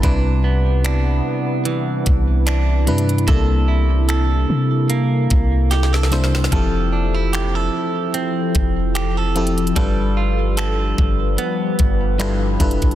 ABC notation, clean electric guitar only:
X:1
M:4/4
L:1/16
Q:"Swing 16ths" 1/4=74
K:C
V:1 name="Clean electric guitar"
[C,D]2 B,2 D4 E,4 D4 | [C,A]2 E2 A4 _B,4 G A3 | [F,A]2 D E G A3 C4 G A3 | [G,A]2 F2 A4 B,4 G,,4 |]